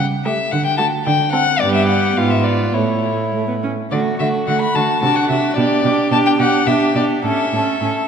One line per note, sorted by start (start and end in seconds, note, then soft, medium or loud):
0.00 0.41 C#3 soft
0.25 0.45 A3 soft
0.25 0.45 G4 soft
0.25 0.53 E5 medium
0.51 0.95 D3 soft
0.51 0.65 F#5 medium
0.65 0.77 G5 medium
0.78 0.99 A3 soft
0.78 0.99 F#4 soft
0.78 0.86 A5 medium
1.05 1.49 D3 medium
1.05 1.32 G5 medium
1.32 1.54 C4 soft
1.32 1.54 A4 soft
1.32 1.61 F#5 medium
1.60 2.13 G2 soft
1.60 2.13 B3 soft
1.60 2.19 G4 soft
1.60 1.74 D5 medium
1.74 1.87 E5 medium
1.87 2.18 F#5 medium
2.16 2.74 G#2 soft
2.16 2.73 B3 soft
2.16 2.76 F4 soft
2.16 2.32 F5 medium
2.31 2.45 E5 soft
2.44 2.76 D5 soft
2.74 3.69 A2 soft
2.74 3.27 A3 soft
2.74 3.71 E4 soft
2.74 3.33 C#5 soft
3.34 3.47 A3 soft
3.48 3.54 B3 soft
3.63 3.71 C#4 soft
3.91 4.00 D3 soft
3.91 4.19 A3 soft
3.91 4.19 F#4 soft
3.91 3.99 D5 soft
4.19 4.28 D3 soft
4.19 4.47 A3 soft
4.19 4.47 F#4 soft
4.19 4.27 E5 soft
4.47 4.55 D3 soft
4.47 4.74 A3 soft
4.47 4.75 F#4 soft
4.47 4.61 F#5 soft
4.61 4.77 B5 medium
4.75 4.83 D3 soft
4.75 5.02 A3 soft
4.75 5.02 F#4 soft
4.75 5.02 A5 soft
5.02 5.10 C3 soft
5.02 5.29 D4 soft
5.02 5.28 F#4 soft
5.02 5.17 A5 medium
5.16 5.29 F#5 medium
5.28 5.38 C3 soft
5.28 5.57 D4 soft
5.28 5.56 F#4 soft
5.28 5.56 E5 soft
5.57 5.65 B2 soft
5.57 5.84 D4 soft
5.57 5.84 G4 soft
5.57 6.10 D5 medium
5.84 5.92 B2 soft
5.84 6.11 D4 soft
5.84 6.10 G4 soft
6.11 6.19 B2 soft
6.11 6.39 D4 soft
6.11 6.38 G4 soft
6.11 6.17 A5 medium
6.26 6.31 G5 medium
6.39 6.47 B2 soft
6.39 6.67 D4 soft
6.39 6.67 G4 soft
6.39 6.68 F#5 medium
6.66 6.74 B2 soft
6.66 6.95 D4 soft
6.66 6.95 G4 soft
6.66 6.95 E5 medium
6.95 7.03 B2 soft
6.95 7.24 D4 soft
6.95 7.23 G4 soft
6.95 7.04 D5 soft
7.23 7.31 A2 soft
7.23 7.53 C#4 soft
7.23 7.53 A4 soft
7.23 8.08 E5 soft
7.53 7.61 A2 soft
7.53 7.81 C#4 soft
7.53 7.82 A4 soft
7.81 7.89 A2 soft
7.81 7.90 C#4 soft
7.81 8.08 A4 soft